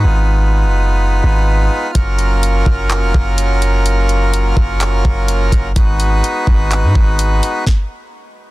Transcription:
Already playing: G#3 B3 D#4 B4
0.05 G#1 F4
0.64 F#1
1.24 G#1
1.95 F#1 F#3 A#3 C#4 A#4, kick, closed hi-hat
2.19 closed hi-hat
2.43 closed hi-hat
2.66 F#1, kick
2.90 clap, closed hi-hat
3.02 F1
3.14 F#1, kick
3.38 closed hi-hat
3.62 closed hi-hat
3.86 closed hi-hat
4.09 closed hi-hat
4.34 closed hi-hat
4.57 F#1, kick
4.81 clap, closed hi-hat
5.05 F#1, kick
5.28 closed hi-hat
5.52 F#1, kick, closed hi-hat
5.76 G#1 G#3 B3 D#4 F#4 B4, kick, closed hi-hat
6.00 closed hi-hat
6.24 closed hi-hat
6.47 G#1, kick
6.71 clap, closed hi-hat
6.83 G#2
6.95 G#1, kick
7.19 closed hi-hat
7.43 closed hi-hat
7.67 kick, snare

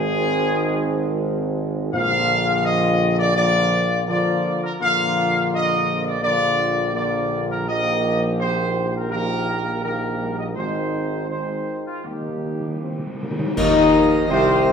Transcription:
Already playing: G#1 D#3 G#3 C4 G#4
1.93 A#1 A#2 D3 F3 A#3 F4 F5
2.64 D#5
3.19 D5
3.35 D3 F3 A#3 F4 D5
4.07 D3 F3 A#3 F4 D5
4.64 A#4
4.79 A#1 D3 F3 A#3 F4 F5
5.52 D#5
6.05 D5
6.21 D3 F3 A#3 F4 D5
6.93 D3 F3 A#3 F4 D5
7.50 A#4
7.68 D#3 F3 A#3 G4 D#5
8.40 C5
8.95 A#4
9.11 D#3 F3 A#3 G4 A#4
9.83 D#3 F3 A#3 G4 A#4
10.20 G3
10.38 D#5
10.55 G#1 D#3 G#3 C4 D#4 C5
11.29 D#3 G#3 C4 D#4 C5
11.86 F4
12.04 D#2 D#3 G3 A#3 D#4 G4
12.21 D#3
12.29 D#3
12.37 D#3
12.45 D#3
12.52 D#3
12.60 D#3
12.68 D#3
12.76 D#3
12.81 D#3 C4
12.92 D#3
12.99 D#3
13.07 D#3
13.15 D#3
13.20 D#3 A#3
13.31 D#3
13.39 D#3
13.47 D#3
13.56 D#2 D#3 F3 D#4 A#4 D#5, concert bass drum, crash
14.29 C2 C3 C4 C5

